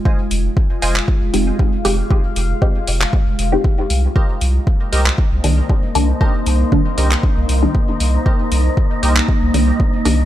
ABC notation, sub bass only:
X:1
M:4/4
L:1/16
Q:1/4=117
K:Fm
V:1 name="Sub bass" clef=bass
z2 F,,, z3 F,,, z2 F,,, F,,, z3 F,,, z | z2 F,,, z3 F,,, z2 F,,, F,,, z3 C,, z | z2 C,, z3 C,, z2 C,, C,, z3 C,, z | z2 C,, z3 C,, z2 C,, C,, z3 C,, z |
z2 C,, z3 C,, z2 C,, C,, z3 C,, z |]